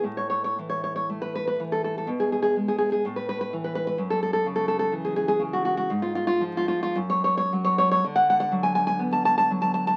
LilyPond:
\new Staff \with { instrumentName = "Nylon-string guitar" } { \time 2/4 \key a \major \tempo 4 = 61 << { r32 cis''32 cis''32 cis''32 r32 cis''32 cis''32 cis''32 r32 b'32 b'32 b'32 r32 a'32 a'32 a'32 | r32 gis'32 gis'32 gis'32 r32 gis'32 gis'32 gis'32 r32 b'32 b'32 b'32 r32 b'32 b'32 b'32 | r32 a'32 a'32 a'32 r32 a'32 a'32 a'32 r32 gis'32 gis'32 gis'32 r32 fis'32 fis'32 fis'32 | r32 f'32 f'32 f'32 r32 f'32 f'32 f'32 r32 cis''32 cis''32 cis''32 r32 cis''32 cis''32 cis''32 |
r32 fis''32 fis''32 fis''32 r32 gis''32 gis''32 gis''32 r32 a''32 a''32 a''32 r32 a''32 a''32 a''32 | } \\ { a,8 e8 a8 e8 | b,8 gis8 a,8 e8 | fis,8 cis8 e8 cis8 | aes,8 f8 fis,8 fis8 |
d8 fis8 b8 fis8 | } >> }